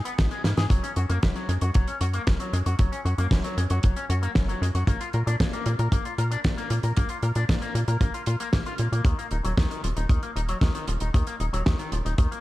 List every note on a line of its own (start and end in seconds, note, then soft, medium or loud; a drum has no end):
0.05 0.13 B3 medium
0.05 closed hi-hat medium
0.18 0.28 G#1 medium
0.18 0.29 G#2 medium
0.18 kick loud
0.18 snare loud
0.18 closed hi-hat medium
0.31 0.43 G#3 medium
0.31 closed hi-hat soft
0.44 0.54 G#2 loud
0.44 0.49 A#3 medium
0.44 snare medium
0.44 closed hi-hat medium
0.57 0.67 G#2 medium
0.57 0.65 G#4 medium
0.57 snare medium
0.57 closed hi-hat medium
0.70 0.80 F#1 medium
0.70 0.82 F#3 medium
0.70 kick loud
0.70 closed hi-hat medium
0.83 0.91 C#4 medium
0.83 closed hi-hat medium
0.96 1.06 F#2 medium
0.96 1.01 F#4 medium
0.96 closed hi-hat medium
1.09 1.19 F#2 medium
1.09 1.17 A#3 loud
1.09 closed hi-hat medium
1.23 1.32 F#1 medium
1.23 1.34 F#2 medium
1.23 kick loud
1.23 snare loud
1.23 closed hi-hat medium
1.36 1.47 F#3 loud
1.36 closed hi-hat soft
1.49 1.58 F#2 medium
1.49 1.53 G#3 medium
1.49 closed hi-hat medium
1.61 1.71 F#2 loud
1.61 1.69 F#4 medium
1.61 closed hi-hat medium
1.74 1.84 F#1 medium
1.74 1.86 F#3 medium
1.74 kick loud
1.74 closed hi-hat medium
1.88 1.95 C#4 medium
1.88 closed hi-hat medium
2.01 2.20 F#2 medium
2.01 2.05 F#4 medium
2.01 closed hi-hat medium
2.13 2.21 A#3 loud
2.13 closed hi-hat medium
2.27 2.37 F#1 medium
2.27 2.38 F#2 medium
2.27 kick loud
2.27 snare loud
2.27 closed hi-hat medium
2.40 2.51 F#3 medium
2.40 closed hi-hat medium
2.53 2.62 F#2 medium
2.53 2.58 G#3 medium
2.53 closed hi-hat medium
2.66 2.75 F#2 medium
2.66 2.74 F#4 medium
2.66 closed hi-hat medium
2.79 2.88 F#1 loud
2.79 2.90 F#3 medium
2.79 kick loud
2.79 closed hi-hat medium
2.92 3.00 C#4 medium
2.92 closed hi-hat medium
3.05 3.15 F#2 loud
3.05 3.10 F#4 medium
3.05 closed hi-hat soft
3.18 3.28 F#2 medium
3.18 3.26 A#3 loud
3.18 closed hi-hat medium
3.31 3.40 F#1 medium
3.31 3.43 F#2 medium
3.31 kick loud
3.31 snare loud
3.31 closed hi-hat medium
3.44 3.56 F#3 loud
3.44 closed hi-hat medium
3.57 3.67 F#2 medium
3.57 3.62 G#3 medium
3.57 closed hi-hat medium
3.70 3.80 F#2 loud
3.70 3.78 F#4 medium
3.70 closed hi-hat medium
3.83 3.93 F#1 medium
3.83 3.95 F#3 medium
3.83 kick loud
3.83 closed hi-hat medium
3.96 4.04 C#4 medium
3.96 closed hi-hat medium
4.09 4.28 F#2 medium
4.09 4.14 F#4 medium
4.09 closed hi-hat medium
4.23 4.30 A#3 loud
4.23 closed hi-hat soft
4.35 4.54 F#1 medium
4.35 4.47 F#2 medium
4.35 kick loud
4.35 snare loud
4.35 closed hi-hat medium
4.49 4.60 F#3 loud
4.49 closed hi-hat medium
4.62 4.71 F#2 medium
4.62 4.66 G#3 medium
4.62 closed hi-hat medium
4.75 4.84 F#2 medium
4.75 4.82 F#4 medium
4.75 closed hi-hat medium
4.87 4.97 A#1 loud
4.87 4.99 A#3 medium
4.87 kick loud
4.87 closed hi-hat medium
5.01 5.08 F4 medium
5.01 closed hi-hat medium
5.13 5.23 A#2 medium
5.13 5.18 A#4 medium
5.13 closed hi-hat soft
5.27 5.36 A#2 medium
5.27 5.34 D4 loud
5.27 closed hi-hat medium
5.40 5.49 A#1 medium
5.40 5.51 A#2 medium
5.40 kick loud
5.40 snare loud
5.40 closed hi-hat loud
5.53 5.64 A#3 loud
5.53 closed hi-hat medium
5.66 5.75 A#2 medium
5.66 5.71 A#3 medium
5.66 closed hi-hat medium
5.79 5.88 A#2 loud
5.79 5.87 A#4 medium
5.79 closed hi-hat soft
5.92 6.01 A#1 medium
5.92 6.03 A#3 medium
5.92 kick loud
5.92 closed hi-hat medium
6.05 6.13 F4 medium
6.05 closed hi-hat medium
6.18 6.37 A#2 medium
6.18 6.23 A#4 medium
6.18 closed hi-hat medium
6.31 6.39 D4 loud
6.31 closed hi-hat medium
6.44 6.54 A#1 medium
6.44 6.56 A#2 medium
6.44 kick loud
6.44 snare loud
6.44 closed hi-hat medium
6.58 6.69 A#3 medium
6.58 closed hi-hat soft
6.70 6.80 A#2 medium
6.70 6.75 A#3 medium
6.70 closed hi-hat medium
6.83 6.93 A#2 medium
6.83 6.91 A#4 medium
6.83 closed hi-hat medium
6.97 7.06 A#1 medium
6.97 7.08 A#3 medium
6.97 kick loud
6.97 closed hi-hat medium
7.09 7.17 F4 medium
7.09 closed hi-hat medium
7.23 7.32 A#2 loud
7.23 7.27 A#4 medium
7.23 closed hi-hat medium
7.35 7.45 A#2 medium
7.35 7.43 D4 loud
7.35 closed hi-hat medium
7.49 7.58 A#1 medium
7.49 7.60 A#2 medium
7.49 kick loud
7.49 snare loud
7.49 closed hi-hat medium
7.62 7.73 A#3 loud
7.62 closed hi-hat soft
7.75 7.84 A#2 medium
7.75 7.79 A#3 medium
7.75 closed hi-hat medium
7.88 7.97 A#2 loud
7.88 7.95 A#4 medium
7.88 closed hi-hat medium
8.01 8.10 A#1 loud
8.01 8.12 A#3 medium
8.01 kick loud
8.01 closed hi-hat medium
8.14 8.22 F4 medium
8.14 closed hi-hat soft
8.26 8.36 A#2 medium
8.26 8.35 F4 medium
8.26 closed hi-hat medium
8.40 8.48 A#3 loud
8.40 closed hi-hat medium
8.53 8.63 A#1 medium
8.53 8.58 A#3 medium
8.53 kick loud
8.53 snare loud
8.53 closed hi-hat medium
8.66 8.74 F4 medium
8.66 closed hi-hat soft
8.78 8.89 A#2 medium
8.78 8.87 A#3 medium
8.78 closed hi-hat medium
8.92 9.02 A#2 medium
8.92 9.04 A#3 medium
8.92 closed hi-hat soft
9.05 9.14 D#2 loud
9.05 9.17 D#3 medium
9.05 kick loud
9.05 closed hi-hat medium
9.19 9.26 A#3 medium
9.19 closed hi-hat soft
9.31 9.41 D#1 loud
9.31 9.36 D#4 medium
9.31 closed hi-hat soft
9.44 9.54 D#1 medium
9.44 9.52 F#3 loud
9.44 closed hi-hat medium
9.57 9.67 D#2 medium
9.57 9.69 D#3 medium
9.57 kick loud
9.57 snare loud
9.57 closed hi-hat loud
9.71 9.82 D#3 medium
9.71 closed hi-hat medium
9.84 9.93 D#1 medium
9.84 9.88 F3 medium
9.84 closed hi-hat medium
9.97 10.06 D#1 loud
9.97 10.04 D#4 medium
9.97 closed hi-hat medium
10.09 10.19 D#2 medium
10.09 10.21 D#3 medium
10.09 kick loud
10.09 closed hi-hat medium
10.23 10.30 A#3 medium
10.23 closed hi-hat medium
10.36 10.54 D#1 medium
10.36 10.40 D#4 medium
10.36 closed hi-hat medium
10.49 10.56 F#3 loud
10.49 closed hi-hat medium
10.61 10.71 D#2 medium
10.61 10.73 D#3 medium
10.61 kick loud
10.61 snare loud
10.61 closed hi-hat medium
10.75 10.86 D#3 loud
10.75 closed hi-hat medium
10.88 10.97 D#1 medium
10.88 10.92 F3 medium
10.88 closed hi-hat medium
11.00 11.10 D#1 medium
11.00 11.08 D#4 medium
11.00 closed hi-hat medium
11.14 11.23 D#2 loud
11.14 11.25 D#3 medium
11.14 kick loud
11.14 closed hi-hat loud
11.27 11.35 A#3 medium
11.27 closed hi-hat medium
11.40 11.49 D#1 loud
11.40 11.45 D#4 medium
11.40 closed hi-hat medium
11.53 11.62 D#1 medium
11.53 11.61 F#3 loud
11.53 closed hi-hat medium
11.66 11.76 D#2 medium
11.66 11.77 D#3 medium
11.66 kick loud
11.66 snare loud
11.66 closed hi-hat medium
11.79 11.90 D#3 loud
11.79 closed hi-hat medium
11.92 12.02 D#1 medium
11.92 11.97 F3 medium
11.92 closed hi-hat medium
12.05 12.15 D#1 loud
12.05 12.13 D#4 medium
12.05 closed hi-hat soft
12.18 12.28 D#2 medium
12.18 12.30 D#3 medium
12.18 kick loud
12.18 closed hi-hat loud
12.31 12.39 A#3 medium
12.31 closed hi-hat medium